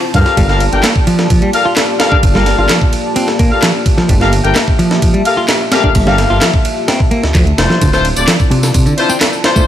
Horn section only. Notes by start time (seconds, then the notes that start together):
0.14 G4 A4 A#4 F5
0.49 G4 A4 A#4 F5
0.72 G4 A4 A#4 G5
1.53 G4 A4 A#4 F5
1.99 G4 A4 A#4 F5
2.35 G4 A4 A#4 F5
2.58 G4 A4 A#4 F5
3.51 G4 A4 A#4 F5
4.21 G4 A4 A#4 F5
4.44 G4 A4 A#4 G5
5.25 G4 A4 A#4 F5
5.72 G4 A4 A#4 F5
6.07 G4 A4 A#4 F5
6.30 G4 A4 A#4 F5
7.58 D4 E4 F4 C5
7.93 D4 E4 F4 C5
8.16 D4 E4 F4 D5
8.98 D4 E4 F4 C5
9.44 D4 E4 F4 C5